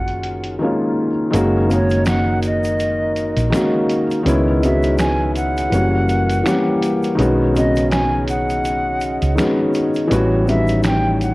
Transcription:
Already playing: fingered electric bass F#1, felt piano D#3 G#3 A#3 C#4 F4 F#4, flute F#5
0.08 closed hi-hat
0.23 closed hi-hat
0.44 closed hi-hat
0.59 felt piano D#3 G#3 A#3 C#4
0.64 felt piano F4
1.31 fingered electric bass F#1, felt piano D#3 G#3 A#3, glass harmonica F#4 A#4 D#5, closed hi-hat
1.35 felt piano C#4 F#4, shaker
1.67 felt piano D#3 G#3 A#3, shaker
1.71 felt piano C#4 D#4, flute C#5, closed hi-hat
1.90 closed hi-hat, shaker
2.05 flute F#5, finger snap, snare, closed hi-hat, shaker
2.43 flute D#5, closed hi-hat, shaker
2.64 closed hi-hat, shaker
2.80 closed hi-hat, shaker
3.16 closed hi-hat, shaker
3.37 fingered electric bass A#1, closed hi-hat, shaker
3.50 felt piano D#3 G#3 A#3, finger snap, snare, closed hi-hat
3.54 felt piano C#4 F#4, shaker
3.89 closed hi-hat, shaker
4.11 closed hi-hat, shaker
4.23 fingered electric bass C#2, felt piano D#3 G#3 B3 C#4, glass harmonica C#4 G#4 B4 C#5 E5, closed hi-hat
4.27 felt piano E4, shaker
4.61 felt piano D#3 G#3 B3 C#4, flute E5, closed hi-hat, shaker
4.65 felt piano F#4
4.83 closed hi-hat, shaker
4.98 flute G#5, finger snap, snare, closed hi-hat, shaker
5.35 flute F#5, closed hi-hat, shaker
5.57 closed hi-hat, shaker
5.70 fingered electric bass F#1, felt piano E3 G3 A#3 C#4, glass harmonica C#4 E4 A#4, closed hi-hat, shaker
5.75 felt piano F#4
6.09 closed hi-hat, shaker
6.30 closed hi-hat, shaker
6.44 felt piano E3 G3 A#3 C#4, finger snap, snare, closed hi-hat, shaker
6.48 felt piano G4
6.82 closed hi-hat, shaker
7.03 closed hi-hat, shaker
7.15 fingered electric bass B1, felt piano D#3 G#3 B3, glass harmonica D#5, closed hi-hat
7.19 glass harmonica B3 G#4 C#5, felt piano C#4 F#4, shaker
7.53 felt piano C#3 G#3 B3 C#4, flute D#5, closed hi-hat, shaker
7.59 felt piano D#3 F#4
7.76 closed hi-hat, shaker
7.91 flute G#5, finger snap, snare, closed hi-hat, shaker
8.28 flute F#5, closed hi-hat, shaker
8.50 closed hi-hat, shaker
8.65 closed hi-hat, shaker
9.01 closed hi-hat, shaker
9.22 fingered electric bass C#2, closed hi-hat, shaker
9.35 felt piano D#3 G#3 B3, finger snap, snare, closed hi-hat, shaker
9.40 felt piano C#4 F#4
9.74 closed hi-hat, shaker
9.94 closed hi-hat, shaker
10.07 fingered electric bass A1, felt piano E3 G3 B3 C#4, glass harmonica B3 G4, closed hi-hat
10.12 glass harmonica A3, felt piano F#4, shaker
10.44 felt piano E3 G3 B3 C#4, shaker
10.48 felt piano D#3, flute E5, closed hi-hat
10.67 closed hi-hat, shaker
10.83 flute G5, finger snap, snare, closed hi-hat, shaker
11.21 flute F#5, closed hi-hat, shaker

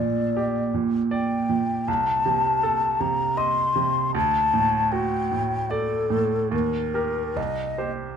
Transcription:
Already playing: grand piano A#1 A#2, flute D5
0.37 grand piano G4
0.74 grand piano A#2
1.11 grand piano D5, flute G5
1.49 grand piano A#2
1.88 grand piano C2, flute A5
2.26 grand piano C3
2.63 grand piano A4
3.00 grand piano C3, flute A#5
3.37 grand piano D#5, flute C6
3.76 grand piano C3
4.15 grand piano D2, flute A5
4.54 grand piano A2
4.92 grand piano F#4, flute G5
5.32 grand piano A2
5.71 flute A4, grand piano D5
6.10 grand piano A2
6.51 grand piano D#2, flute A#4
6.94 grand piano G4 A#4
7.36 grand piano C2, flute D#5
7.78 grand piano G4 C5

